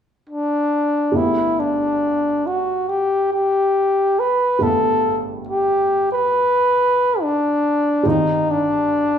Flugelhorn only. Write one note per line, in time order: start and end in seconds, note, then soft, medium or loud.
0.29 1.18 D4 medium
1.16 1.61 E4 medium
1.60 2.48 D4 medium
2.47 2.90 F#4 soft
2.89 3.32 G4 medium
3.32 4.21 G4 medium
4.20 4.64 B4 medium
4.63 5.21 A4 medium
5.49 6.08 G4 medium
6.12 7.23 B4 medium
7.22 8.09 D4 medium
8.08 8.52 D#4 medium
8.51 9.19 D4 medium